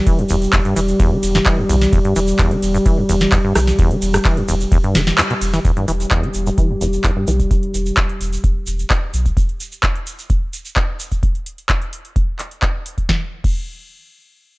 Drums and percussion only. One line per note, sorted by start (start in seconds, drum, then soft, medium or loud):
0.07 kick loud
0.07 closed hi-hat medium
0.07 ride medium
0.07 shaker soft
0.19 closed hi-hat soft
0.29 open hi-hat loud
0.29 ride medium
0.29 shaker loud
0.42 closed hi-hat medium
0.42 shaker medium
0.53 kick loud
0.53 clap loud
0.53 closed hi-hat medium
0.53 ride medium
0.53 shaker soft
0.65 closed hi-hat soft
0.76 open hi-hat loud
0.76 ride medium
0.76 shaker medium
0.88 closed hi-hat medium
0.88 shaker medium
1.00 kick loud
1.00 closed hi-hat medium
1.00 ride medium
1.00 shaker soft
1.23 open hi-hat loud
1.23 ride medium
1.23 shaker loud
1.35 snare medium
1.35 closed hi-hat medium
1.35 shaker soft
1.46 kick loud
1.46 clap loud
1.46 closed hi-hat medium
1.46 ride medium
1.46 shaker soft
1.69 open hi-hat loud
1.69 ride medium
1.69 shaker medium
1.81 snare soft
1.81 closed hi-hat medium
1.81 shaker soft
1.93 kick loud
1.93 closed hi-hat medium
1.93 ride medium
1.93 shaker soft
2.05 closed hi-hat soft
2.16 open hi-hat loud
2.16 ride medium
2.16 shaker loud
2.27 closed hi-hat medium
2.27 shaker medium
2.39 kick loud
2.39 clap loud
2.39 closed hi-hat medium
2.39 ride medium
2.39 shaker soft
2.51 closed hi-hat soft
2.62 open hi-hat loud
2.62 ride medium
2.62 shaker medium
2.74 closed hi-hat medium
2.74 shaker medium
2.86 kick loud
2.86 closed hi-hat medium
2.86 ride medium
2.86 shaker soft
3.09 open hi-hat loud
3.09 ride medium
3.09 shaker medium
3.20 snare medium
3.20 closed hi-hat medium
3.20 shaker soft
3.32 kick loud
3.32 clap loud
3.32 closed hi-hat medium
3.32 ride medium
3.32 shaker soft
3.55 cross-stick medium
3.55 open hi-hat loud
3.55 ride medium
3.55 shaker medium
3.67 snare soft
3.67 closed hi-hat medium
3.67 shaker soft
3.79 kick loud
3.79 closed hi-hat medium
3.79 ride medium
3.79 shaker soft
3.91 closed hi-hat soft
4.02 open hi-hat loud
4.02 ride medium
4.02 shaker medium
4.14 cross-stick medium
4.14 closed hi-hat medium
4.14 shaker medium
4.25 kick loud
4.25 clap loud
4.25 closed hi-hat medium
4.25 ride medium
4.25 shaker soft
4.37 closed hi-hat soft
4.48 open hi-hat loud
4.48 ride medium
4.48 shaker loud
4.60 closed hi-hat medium
4.60 shaker medium
4.72 kick loud
4.72 closed hi-hat medium
4.72 ride medium
4.72 shaker soft
4.84 closed hi-hat soft
4.95 snare medium
4.95 open hi-hat loud
4.95 ride medium
4.95 shaker medium
5.07 snare medium
5.07 closed hi-hat medium
5.07 shaker soft
5.18 clap loud
5.18 closed hi-hat medium
5.18 ride medium
5.18 shaker soft
5.30 closed hi-hat soft
5.41 open hi-hat loud
5.41 ride medium
5.41 shaker loud
5.53 snare soft
5.53 closed hi-hat medium
5.53 shaker medium
5.65 kick loud
5.65 closed hi-hat medium
5.65 shaker soft
5.77 closed hi-hat soft
5.88 open hi-hat loud
5.88 shaker medium
6.00 closed hi-hat medium
6.00 shaker medium
6.11 kick loud
6.11 clap loud
6.11 closed hi-hat medium
6.11 shaker soft
6.23 closed hi-hat soft
6.34 open hi-hat loud
6.34 shaker medium
6.47 closed hi-hat medium
6.47 shaker medium
6.58 kick loud
6.58 closed hi-hat medium
6.58 shaker soft
6.81 open hi-hat loud
6.81 shaker medium
6.93 closed hi-hat soft
6.93 shaker medium
7.04 kick loud
7.04 clap loud
7.04 closed hi-hat medium
7.04 shaker soft
7.27 open hi-hat loud
7.27 shaker medium
7.40 kick medium
7.40 closed hi-hat medium
7.40 shaker soft
7.51 kick loud
7.51 closed hi-hat medium
7.51 shaker soft
7.63 closed hi-hat soft
7.74 open hi-hat loud
7.74 shaker medium
7.86 closed hi-hat medium
7.86 shaker medium
7.97 kick loud
7.97 clap loud
7.97 closed hi-hat medium
7.97 shaker soft
8.09 closed hi-hat soft
8.21 open hi-hat loud
8.21 shaker medium
8.33 closed hi-hat soft
8.33 shaker medium
8.44 kick loud
8.44 closed hi-hat medium
8.44 shaker soft
8.67 open hi-hat loud
8.67 shaker medium
8.79 closed hi-hat soft
8.79 shaker soft
8.90 kick loud
8.90 clap loud
8.90 closed hi-hat medium
8.90 shaker soft
9.14 open hi-hat loud
9.14 shaker medium
9.26 kick medium
9.26 closed hi-hat soft
9.26 shaker soft
9.37 kick loud
9.37 closed hi-hat medium
9.37 shaker soft
9.49 closed hi-hat soft
9.60 open hi-hat loud
9.60 shaker medium
9.72 closed hi-hat soft
9.72 shaker soft
9.83 kick loud
9.83 clap loud
9.83 closed hi-hat medium
9.83 shaker soft
9.96 closed hi-hat soft
10.07 open hi-hat loud
10.07 shaker medium
10.19 closed hi-hat soft
10.19 shaker soft
10.30 kick loud
10.30 closed hi-hat medium
10.30 shaker soft
10.53 open hi-hat loud
10.53 shaker medium
10.65 closed hi-hat soft
10.65 shaker soft
10.76 kick loud
10.76 clap loud
10.76 closed hi-hat medium
10.76 shaker soft
11.00 open hi-hat loud
11.00 shaker loud
11.12 kick medium
11.12 closed hi-hat soft
11.12 shaker medium
11.23 kick loud
11.23 closed hi-hat medium
11.35 closed hi-hat soft
11.46 open hi-hat loud
11.58 closed hi-hat soft
11.69 kick loud
11.69 clap loud
11.69 closed hi-hat medium
11.82 closed hi-hat soft
11.93 open hi-hat loud
12.05 closed hi-hat soft
12.16 kick loud
12.16 closed hi-hat medium
12.39 clap soft
12.39 open hi-hat loud
12.51 closed hi-hat soft
12.62 kick loud
12.62 clap loud
12.62 closed hi-hat medium
12.86 open hi-hat loud
12.98 kick medium
12.98 closed hi-hat soft
13.09 kick medium
13.09 snare medium
13.44 kick loud
13.44 crash medium